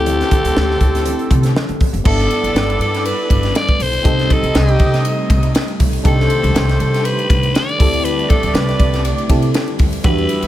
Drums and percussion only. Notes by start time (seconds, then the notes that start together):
0.06 closed hi-hat, muted conga
0.21 snare, closed hi-hat
0.31 kick, closed hi-hat, muted conga
0.45 closed hi-hat
0.57 snare, high conga
0.71 snare
0.81 kick, closed hi-hat, low conga
0.95 snare, closed hi-hat
1.06 closed hi-hat, muted conga
1.19 closed hi-hat
1.31 kick, closed hi-hat, muted conga
1.43 snare, closed hi-hat
1.55 snare, high conga
1.69 closed hi-hat
1.80 kick, open hi-hat, high conga
1.94 closed hi-hat
2.05 kick, crash
2.20 snare, ride
2.30 ride
2.44 ride
2.56 snare, ride
2.70 ride
2.81 ride
2.94 snare, ride
3.05 ride
3.30 kick, ride
3.43 snare, ride
3.55 snare, ride
3.69 kick, ride
3.80 open hi-hat, ride
3.93 ride
4.05 kick, hi-hat pedal, ride
4.19 snare, ride
4.30 kick, ride
4.43 ride
4.55 snare, ride
4.68 ride
4.79 kick, ride
4.94 snare, ride
5.05 ride
5.30 kick, ride
5.43 ride
5.55 snare, ride
5.68 ride
5.80 kick, open hi-hat, ride
5.93 ride
6.05 kick, hi-hat pedal, ride
6.20 snare
6.30 ride
6.44 ride
6.56 snare, ride
6.69 snare, ride
6.80 ride
6.94 snare, ride
7.05 ride
7.19 ride
7.30 kick, ride
7.43 ride
7.55 snare, ride
7.69 ride
7.80 kick, open hi-hat, ride
7.93 ride
8.05 hi-hat pedal, ride
8.19 ride
8.30 kick, ride
8.43 ride
8.55 snare, ride
8.69 snare, ride
8.80 kick, ride
8.93 snare, ride
9.05 ride
9.18 ride
9.29 kick, ride
9.42 ride
9.54 snare, ride
9.68 ride
9.79 kick, open hi-hat, ride
9.93 ride
10.04 kick, hi-hat pedal, ride, muted conga
10.18 ride
10.29 ride, muted conga
10.42 ride